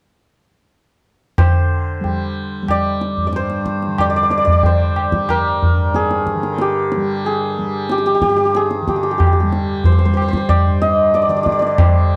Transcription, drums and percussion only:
1.38 tabla na, tabla ge
2.04 tabla tin, tabla ge
2.68 tabla na, tabla ge
3.01 tabla te
3.17 tabla ge
3.33 tabla te
3.50 tabla te
3.66 tabla ke
3.82 tabla te
3.98 tabla na, tabla ge
4.31 tabla te
4.47 tabla ge
4.63 tabla tin, tabla ge
4.96 tabla na
5.12 tabla ke
5.29 tabla na, tabla ge
5.62 tabla ge
5.94 tabla te
6.11 tabla te
6.27 tabla ke
6.43 tabla te
6.58 tabla te
6.92 tabla te
7.25 tabla tin
7.89 tabla te
8.06 tabla te
8.22 tabla ke
8.38 tabla te
8.55 tabla te
8.71 tabla te
8.88 tabla ke
9.03 tabla te
9.20 tabla na, tabla ge
9.53 tabla te
9.84 tabla tin, tabla ge
10.17 tabla na
10.33 tabla ke
10.49 tabla na, tabla ge
10.82 tabla te
11.14 tabla te
11.30 tabla te
11.46 tabla ke
11.62 tabla te
11.78 tabla na, tabla ge

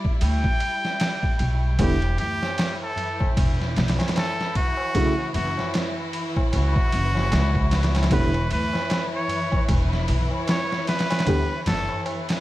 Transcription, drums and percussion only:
0.05 kick
0.21 ride
0.44 kick
0.60 ride
0.85 snare
1.00 snare, ride
1.23 kick
1.39 ride
1.79 kick, ride, tabla na
2.02 ride, tabla na
2.18 ride, tabla ge
2.42 snare, tabla na
2.58 snare, ride, tabla na
2.81 tabla na
2.96 ride, tabla ge
3.20 kick, tabla na
3.37 kick, ride, tabla na
3.59 snare, tabla na
3.76 snare, ride, tabla ge
3.88 snare, ride
3.99 snare, ride, tabla na
4.08 snare, ride
4.16 snare, ride, tabla na
4.39 snare, tabla na
4.55 kick, ride
4.77 tabla na
4.95 kick, ride, tabla na
5.18 tabla na
5.34 ride, tabla ge
5.57 snare, tabla na
5.73 snare, ride, tabla na
5.97 tabla na
6.13 ride
6.36 kick, tabla na
6.52 ride, tabla na
6.76 kick, tabla na
6.92 ride, tabla ge
7.15 snare, tabla na
7.31 snare, ride, tabla na
7.55 kick, tabla na
7.71 snare, ride
7.83 snare, ride
7.94 snare, ride, tabla na
8.03 snare, ride
8.10 kick, ride, tabla na
8.33 ride, tabla na
8.50 ride, tabla ge
8.73 snare, tabla na
8.90 snare, ride, tabla na
9.13 tabla na
9.28 ride, tabla ge
9.52 kick, tabla na
9.68 kick, ride, tabla na
9.91 snare, tabla na
10.08 ride, tabla ge
10.31 tabla na
10.47 snare, ride, tabla na
10.71 snare, tabla na
10.87 snare, ride
10.99 snare, ride
11.10 snare, ride, tabla na
11.19 snare, ride
11.26 kick, ride, tabla na
11.50 tabla na
11.66 snare, ride, tabla ge
11.89 tabla na
12.06 ride, tabla na
12.29 snare, ride, tabla na

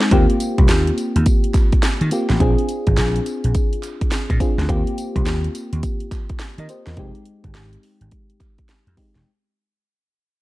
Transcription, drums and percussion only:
0.00 snare
0.11 kick, closed hi-hat
0.30 closed hi-hat
0.40 closed hi-hat, tambourine
0.58 kick, closed hi-hat
0.69 snare, clap, closed hi-hat, tambourine
0.87 closed hi-hat
0.98 closed hi-hat, tambourine
1.16 closed hi-hat
1.26 kick, closed hi-hat, tambourine
1.44 closed hi-hat
1.54 kick, clap, closed hi-hat, tambourine
1.72 kick, closed hi-hat
1.83 snare, clap, closed hi-hat, tambourine
2.01 closed hi-hat
2.11 closed hi-hat, tambourine
2.29 snare, closed hi-hat
2.40 kick, closed hi-hat
2.58 closed hi-hat
2.68 closed hi-hat, tambourine
2.87 kick, closed hi-hat
2.97 snare, clap, closed hi-hat, tambourine
3.16 closed hi-hat
3.26 closed hi-hat, tambourine
3.44 closed hi-hat
3.55 kick, closed hi-hat, tambourine
3.73 closed hi-hat
3.83 clap, closed hi-hat, tambourine
4.01 kick, closed hi-hat
4.11 snare, clap, closed hi-hat, tambourine
4.30 kick, closed hi-hat
4.40 kick, closed hi-hat, tambourine
4.59 snare, closed hi-hat
4.69 kick, closed hi-hat
4.87 closed hi-hat
4.98 closed hi-hat, tambourine
5.16 kick, closed hi-hat
5.26 snare, clap, closed hi-hat, tambourine
5.44 closed hi-hat
5.55 closed hi-hat, tambourine
5.73 closed hi-hat
5.83 kick, closed hi-hat, tambourine
6.00 closed hi-hat
6.11 kick, clap, closed hi-hat, tambourine
6.29 kick, closed hi-hat
6.39 snare, clap, closed hi-hat, tambourine
6.58 closed hi-hat
6.69 closed hi-hat, tambourine
6.86 snare, closed hi-hat
6.97 kick, closed hi-hat
7.15 closed hi-hat
7.25 closed hi-hat
7.44 kick, closed hi-hat
7.55 snare, clap, closed hi-hat
7.73 closed hi-hat
7.83 open hi-hat
8.01 closed hi-hat
8.11 kick, closed hi-hat
8.30 closed hi-hat
8.40 kick, clap, closed hi-hat
8.58 kick, closed hi-hat
8.69 snare, clap, closed hi-hat
8.87 closed hi-hat
8.97 kick, open hi-hat
9.15 snare, closed hi-hat

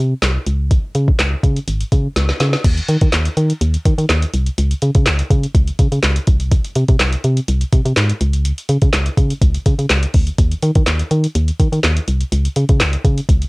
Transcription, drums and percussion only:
0.22 snare, clap, closed hi-hat
0.46 closed hi-hat
0.71 kick, closed hi-hat
0.95 closed hi-hat
1.08 kick
1.19 snare, clap, closed hi-hat
1.43 kick, closed hi-hat
1.56 closed hi-hat
1.68 closed hi-hat
1.81 closed hi-hat
1.92 kick, closed hi-hat
2.16 snare, closed hi-hat
2.29 snare
2.40 snare, closed hi-hat
2.53 snare
2.64 kick, closed hi-hat, crash
2.78 closed hi-hat
2.89 closed hi-hat
3.01 kick, closed hi-hat
3.12 snare, clap, closed hi-hat
3.25 closed hi-hat
3.37 closed hi-hat
3.50 closed hi-hat
3.61 closed hi-hat
3.74 closed hi-hat
3.85 kick, closed hi-hat
3.99 closed hi-hat
4.09 snare, clap, closed hi-hat
4.22 closed hi-hat
4.34 closed hi-hat
4.46 closed hi-hat
4.58 closed hi-hat
4.71 closed hi-hat
4.82 closed hi-hat
4.95 kick, closed hi-hat
5.06 snare, clap, closed hi-hat
5.19 closed hi-hat
5.30 kick, closed hi-hat
5.43 closed hi-hat
5.55 kick, closed hi-hat
5.67 closed hi-hat
5.79 kick, closed hi-hat
5.92 closed hi-hat
6.03 snare, clap, closed hi-hat
6.16 closed hi-hat
6.27 kick, closed hi-hat
6.40 closed hi-hat
6.52 kick, closed hi-hat
6.65 closed hi-hat
6.76 closed hi-hat
6.88 kick, closed hi-hat
7.00 snare, clap, closed hi-hat
7.13 closed hi-hat
7.24 closed hi-hat
7.37 closed hi-hat
7.48 closed hi-hat
7.61 closed hi-hat
7.72 kick, closed hi-hat
7.85 closed hi-hat
7.96 snare, clap, closed hi-hat
8.09 closed hi-hat
8.21 closed hi-hat
8.33 closed hi-hat
8.45 closed hi-hat
8.58 closed hi-hat
8.69 closed hi-hat
8.82 kick, closed hi-hat
8.93 snare, clap, closed hi-hat
9.06 closed hi-hat
9.17 kick, closed hi-hat
9.30 closed hi-hat
9.42 kick, closed hi-hat
9.54 closed hi-hat
9.66 kick, closed hi-hat
9.79 closed hi-hat
9.90 snare, clap, closed hi-hat
10.03 closed hi-hat
10.14 kick, open hi-hat
10.27 closed hi-hat
10.38 kick, closed hi-hat
10.51 closed hi-hat
10.62 closed hi-hat
10.75 kick, closed hi-hat
10.86 snare, clap, closed hi-hat
10.99 closed hi-hat
11.11 closed hi-hat
11.24 closed hi-hat
11.35 closed hi-hat
11.48 closed hi-hat
11.60 kick, closed hi-hat
11.73 closed hi-hat
11.83 snare, clap, closed hi-hat
11.97 closed hi-hat
12.08 closed hi-hat
12.21 closed hi-hat
12.32 closed hi-hat
12.45 closed hi-hat
12.56 closed hi-hat
12.69 kick, closed hi-hat
12.80 snare, clap, closed hi-hat
12.93 closed hi-hat
13.05 kick, closed hi-hat
13.18 closed hi-hat
13.29 kick, closed hi-hat
13.42 closed hi-hat

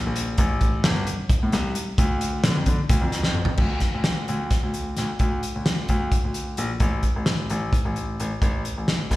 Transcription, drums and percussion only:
0.16 closed hi-hat
0.38 kick, closed hi-hat
0.61 kick, closed hi-hat
0.84 snare, closed hi-hat
1.07 closed hi-hat
1.30 kick, closed hi-hat
1.52 snare, closed hi-hat
1.75 closed hi-hat
1.98 kick, closed hi-hat
2.21 closed hi-hat
2.44 snare, closed hi-hat
2.66 kick, closed hi-hat
2.89 kick, closed hi-hat
3.12 snare, closed hi-hat
3.23 snare
3.35 mid tom
3.45 floor tom
3.57 kick, crash
3.80 kick, snare, closed hi-hat
4.04 snare, closed hi-hat
4.28 closed hi-hat
4.51 kick, snare, closed hi-hat
4.74 closed hi-hat
4.97 snare, closed hi-hat
5.19 kick, closed hi-hat
5.43 closed hi-hat
5.66 snare, closed hi-hat
5.89 kick, closed hi-hat
6.12 kick, closed hi-hat
6.34 closed hi-hat
6.57 closed hi-hat
6.80 kick, closed hi-hat
7.03 kick, closed hi-hat
7.26 snare, closed hi-hat
7.50 closed hi-hat
7.73 kick, closed hi-hat
7.96 closed hi-hat
8.20 closed hi-hat
8.42 kick, closed hi-hat
8.65 closed hi-hat
8.88 snare, closed hi-hat
9.11 kick, snare, closed hi-hat

